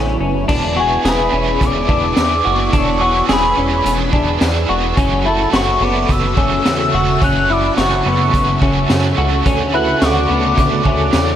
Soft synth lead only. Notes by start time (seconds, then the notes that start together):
0.80 G#5
1.08 B5
1.65 D6
2.78 C#6
3.33 B5
5.27 A5
5.55 C#6
5.83 D6
6.11 E6
7.24 F#6
7.52 D6
7.80 C#6
9.75 F#6
10.03 D6
10.59 D6